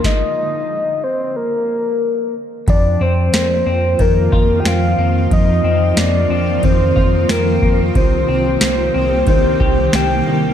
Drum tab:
RD |--------|x-x-x-x-|x-x-x-x-|x-x-x-x-|
TB |--------|--x---x-|--x---x-|--x---x-|
SD |o-------|--o---o-|--o---o-|--o---o-|
BD |o-------|o---oo--|o---oo-o|o---oo--|